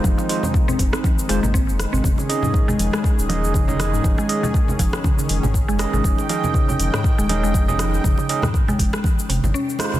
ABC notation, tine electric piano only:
X:1
M:4/4
L:1/16
Q:"Swing 16ths" 1/4=120
K:Dblyd
V:1 name="Tine electric piano"
[A,EFc]2 [A,EFc] z6 z [A,EFc] z4 z | z2 [DEAe]8 [DEAe]3 [DEAe]3- | [DEAe]2 [DEAe] z8 z3 [DEAe]2- | [DEAe]2 [DEAe]8 [DEAe]3 [DEAe]3- |
[DEAe]2 [DEAe] z8 z3 [A,EFc]2 |]